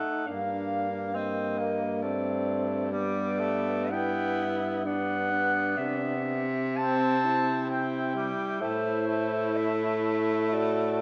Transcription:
Already playing: A3 D#4 F#5
0.27 G2 A#3 D4 F5
1.14 A#3 C4 D#5
1.58 A#3
2.02 A3 C4 D5
2.91 G3 B3 D5
3.40 A3
3.91 B3 E4 G5
4.85 B3 D4 F#5
5.31 D4
5.77 C3 E5
6.77 C4 A5
7.25 E4
7.64 A5
7.70 C4 G5
8.15 G3
8.61 A2 A3 E4 C5
9.08 A3
9.56 E5
10.52 F#4 D5

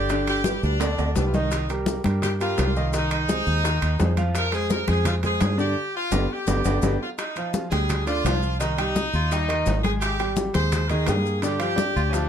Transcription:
Already playing: G1 G4
0.09 D3 D4 D5, high bongo, high conga, high timbale, maracas
0.27 G4, high bongo, high conga, high timbale, maracas
0.44 G3 G4 B4, high bongo, high conga, low timbale, maracas
0.62 D2 D4, high bongo, high conga, maracas
0.80 D3 D4 D5, high bongo, high conga, high timbale, maracas
0.98 D2, high bongo, high conga, high timbale, maracas
1.16 C2 G3 D4 G4 B4, high bongo, low bongo, high conga, maracas
1.26 F4
1.34 D#3 D#4 D#5, high conga, low timbale, maracas
1.51 high bongo, high conga, high timbale, maracas
1.69 G3 G4 A#4, high conga, high timbale, maracas
1.86 high bongo, high conga, low timbale, maracas
2.04 G2 G3 G4 A#4, high conga, high timbale, maracas
2.22 G4, high bongo, high conga, low conga, high timbale, maracas
2.40 G3 F4 G4 A#4, high conga, high timbale, maracas
2.58 C2, high bongo, low bongo, high conga, high timbale, low timbale, maracas
2.76 D#3 D#4 D#5, high conga, maracas
2.93 D#3 D#4 D#5, high bongo, high conga, high timbale, maracas
3.11 D#4, high bongo, high conga, high timbale, maracas
3.28 G#3 G#4 C5, high bongo, high conga, low timbale, maracas
3.47 D#2, high bongo, high conga, maracas
3.64 D#3 D#4 D#5, high bongo, high conga, high timbale, maracas
3.82 D#2, high bongo, high conga, high timbale, maracas
3.99 F2 G#3 G#4 C5, high bongo, low bongo, high conga, low timbale, maracas
4.17 F3 F4 F5, high conga, high timbale, maracas
4.35 A#4, high bongo, high conga, high timbale, maracas
4.52 G#3 G#4 C5, high conga, high timbale, maracas
4.70 A#4, high bongo, high conga, low timbale, maracas
4.87 F2 G#3 G#4 C5, high conga, high timbale, maracas
5.05 F4, high bongo, high conga, low conga, high timbale, maracas
5.23 G#3 G#4 C5, high conga, low conga, high timbale, maracas
5.41 G2, high bongo, low bongo, high conga, high timbale, low timbale, maracas
5.58 D3 D4 G4 D5, high conga, maracas
5.96 F4
6.12 G1 B3 D4 G4, high bongo, high conga, high timbale, maracas
6.31 G4
6.47 G1 B3 D4 G4, high bongo, high conga, high timbale, maracas
6.65 G1 B3 D4 G4, high bongo, high conga, high timbale, maracas
6.82 G1 B3 D4 G4, high bongo, high conga, high timbale, maracas
7.01 F4
7.18 D#4, high bongo, high conga, high timbale, maracas
7.36 F3 F4 F5, high conga, high timbale, maracas
7.54 high bongo, high conga, low timbale, maracas
7.71 D2 G3 G#4 G5, high conga, high timbale, maracas
7.89 high bongo, high conga, low conga, high timbale, maracas
8.07 D3 D4 F4 D5, high conga, high timbale, maracas
8.25 C2 F3 F4 F5, high bongo, low bongo, high conga, high timbale, low timbale, maracas
8.43 high conga, maracas
8.59 D#3 D#4 D#5, high bongo, high conga, high timbale, maracas
8.77 G3 D#4 G4 G5, high bongo, high conga, high timbale, maracas
8.96 D#4 D#5 D#6, high bongo, high conga, low timbale, maracas
9.13 D#2 F4, high bongo, high conga, maracas
9.31 G3 D#4 G4 G5, high bongo, high conga, high timbale, maracas
9.48 D#3 D#4 D#5, high bongo, high conga, high timbale, maracas
9.66 G#1, high bongo, low bongo, high conga, low timbale, maracas
9.83 G#3 G#4 G#5, high conga, high timbale, maracas
10.00 G4, high bongo, high conga, high timbale, maracas
10.19 G3 G4 G5, high conga, high timbale, maracas
10.36 high bongo, high conga, low timbale, maracas
10.54 D#2 G#3 G#4 C5 G#5, high conga, high timbale, maracas
10.72 high bongo, high conga, low conga, high timbale, maracas
10.89 D#3 D#4 G#4 D#5, high conga, low conga, high timbale, maracas
11.06 G2 A#3 G#4 G5, high bongo, low bongo, high conga, high timbale, low timbale, maracas
11.26 high conga, maracas
11.42 D3 D4 G4 D5, high bongo, high conga, high timbale, maracas
11.59 F3 F4 G4 F5, high bongo, high conga, high timbale, maracas
11.76 D4 D5 D6, high bongo, high conga, low timbale, maracas
11.96 D2 F4, high bongo, high conga, maracas
12.09 F3 C#4 F4 F5, high conga, high timbale
12.14 D4, high bongo, maracas

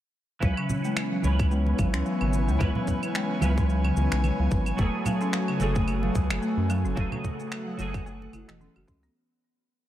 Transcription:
0.40 C#2 E3 F#3 B3 C#4 E4 B4 C#5 G#5, kick, shaker
0.57 C#3, claves
0.69 muted conga, low conga, shaker
0.85 G#3, shaker
0.97 finger snap, claves, shaker
1.12 F#3
1.22 C#2 E3 C#4 B4, muted conga, high conga, shaker
1.39 kick, claves, shaker
1.51 G#3, shaker
1.67 muted conga
1.78 G#1 F#3, kick, high conga, claves, shaker
1.94 C#2 C#4, finger snap, shaker
2.05 F#3, shaker
2.21 G#1 C#3, claves
2.33 shaker
2.48 C#2 G#3, shaker
2.59 C#2 E3 C#4 B4, kick, claves, shaker
2.75 F#3, low conga
2.87 kick, muted conga, low conga, shaker
3.03 claves, shaker
3.15 G#3, finger snap, shaker
3.41 C#2 E3 F#3 C#4 B4, muted conga, high conga, claves, shaker
3.57 C#4, kick, shaker
3.70 F#3, shaker
3.84 C#3, muted conga, claves
3.97 C#2, muted conga, shaker
4.12 B1 G#3, finger snap, shaker
4.24 high conga, claves, shaker
4.39 C#2 F#3
4.51 G#1, kick, shaker
4.66 claves, shaker
4.77 F#1 F#3 A3 F#4, kick, shaker
4.81 G#4
5.05 F#3, muted conga, low conga, claves, shaker
5.21 C#4, shaker
5.33 F#3, finger snap, shaker
5.48 C#3, claves
5.59 F#1 F#3 A3 G#4, muted conga, high conga, shaker
5.75 A3, kick, shaker
5.88 claves, shaker
6.03 F#3, muted conga
6.15 C#2, kick, high conga, shaker
6.30 F#1, finger snap, claves, shaker
6.42 A3, shaker
6.58 F#2
6.70 F#3, claves, shaker
6.85 F#1 C#4, shaker
6.96 F#1 F#3 A3 G#4 F#5, kick, shaker
7.12 C#3, low conga, claves
7.24 kick, muted conga, low conga, shaker
7.40 A3, shaker
7.52 finger snap, claves, shaker
7.67 F#3
7.77 F#1 F#3 A3 G#4, muted conga, high conga, shaker
7.94 kick, claves, shaker
8.06 A3, shaker
8.22 muted conga
8.33 F#1 E4, muted conga, claves, shaker
8.48 E1 E3, finger snap, shaker
8.60 C#4, high conga, shaker
8.76 F#1 F#4, claves
8.88 C#2 C#4, kick, shaker
9.03 B3, shaker

